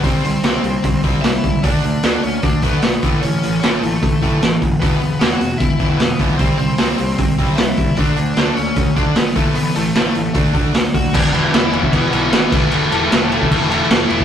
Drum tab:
CC |----------------|----------------|----------------|----------------|
HH |o-o-o-o-o-o-o-o-|o-o-o-o-o-o-o-o-|o-o-o-o-o-o-o-o-|o-o-o-o-o-o-o-o-|
SD |----o-------o---|----o-------o---|----o-------o---|----o-------o---|
BD |o-------o-o---o-|o-------o-o---o-|--------o-o---o-|o-------o-o---o-|

CC |----------------|----------------|----------------|x-x-x-x-x-x-x-x-|
HH |o-o-o-o-o-o-o-o-|o-o-o-o-o-o-o-o-|o-o-o-o-o-o-o-o-|----------------|
SD |----o-------o---|----o-------o---|----o-------o---|----o-------o---|
BD |o-------o-o---o-|o-------o-o---o-|--------o-o---o-|o------oo-----o-|

CC |x-x-x-x-x-x-x-x-|
HH |----------------|
SD |----o-------o---|
BD |-------oo------o|